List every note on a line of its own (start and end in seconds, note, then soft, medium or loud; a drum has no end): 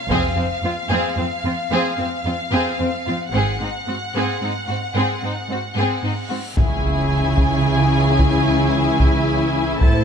0.00 3.29 F5 soft
0.09 0.34 F1 medium
0.09 0.17 F2 soft
0.09 0.35 C4 medium
0.09 0.34 G#4 soft
0.09 taiko soft
0.36 0.44 F2 soft
0.36 0.45 C4 soft
0.62 0.70 F2 soft
0.62 0.72 C4 soft
0.62 0.73 F4 soft
0.89 0.97 F2 soft
0.89 1.15 C4 medium
0.89 1.14 G#4 soft
1.16 1.24 F2 soft
1.16 1.25 C4 soft
1.16 1.26 C4 soft
1.43 1.51 F2 soft
1.43 1.53 C4 soft
1.43 1.53 F4 soft
1.70 1.78 F2 soft
1.70 1.96 C4 soft
1.70 1.97 G#4 soft
1.98 2.06 F2 soft
1.98 2.06 C4 soft
1.98 2.08 C4 soft
2.25 2.33 F2 soft
2.25 2.34 C4 soft
2.25 2.34 F4 soft
2.52 2.60 F2 soft
2.52 2.77 C4 soft
2.52 2.77 G#4 soft
2.79 2.87 F2 soft
2.79 2.87 C4 soft
2.79 2.88 C4 soft
3.07 3.15 F2 soft
3.07 3.16 C4 soft
3.07 3.15 F4 soft
3.32 3.58 G#1 soft
3.32 3.41 G#2 soft
3.32 3.58 C4 soft
3.32 3.59 G#4 soft
3.32 6.33 F#5 soft
3.32 reverse cymbal soft
3.60 3.68 G#2 soft
3.60 3.69 C4 soft
3.60 3.70 D#4 soft
3.87 3.95 G#2 soft
3.87 3.95 C4 soft
3.87 3.97 F#4 soft
4.14 4.22 G#2 soft
4.14 4.39 C4 soft
4.14 4.40 G#4 soft
4.41 4.49 G#2 soft
4.41 4.50 C4 soft
4.41 4.51 D#4 soft
4.68 4.76 G#2 soft
4.68 4.78 C4 soft
4.68 4.76 F#4 soft
4.94 5.02 G#2 soft
4.94 5.20 C4 soft
4.94 5.21 G#4 soft
5.21 5.29 G#2 soft
5.21 5.31 C4 soft
5.21 5.33 D#4 soft
5.49 5.57 G#2 soft
5.49 5.58 C4 soft
5.49 5.60 F#4 soft
5.75 5.83 G#2 soft
5.75 6.02 C4 soft
5.75 6.02 G#4 soft
6.03 6.11 G#2 soft
6.03 6.11 C4 soft
6.03 6.12 D#4 soft
6.28 6.37 G#2 soft
6.28 6.38 C4 soft
6.28 6.36 F#4 soft
6.56 9.77 C#2 soft
6.56 9.77 C#3 soft
6.56 10.04 E3 soft
6.56 9.78 C#4 soft
6.56 9.79 C#4 soft
6.56 10.04 E4 soft
6.56 10.04 E4 medium
6.56 9.77 G#4 soft
6.56 9.79 G#4 soft
6.56 10.04 E5 soft
6.56 9.78 G#5 soft
6.56 taiko medium
6.56 impact medium
7.38 taiko medium
8.19 taiko medium
9.00 taiko medium
9.79 10.04 A1 soft
9.79 10.04 A2 medium
9.79 10.04 C4 medium
9.79 10.04 C4 soft
9.79 10.04 A4 medium
9.79 10.04 C5 medium
9.79 10.04 A5 soft
9.79 taiko medium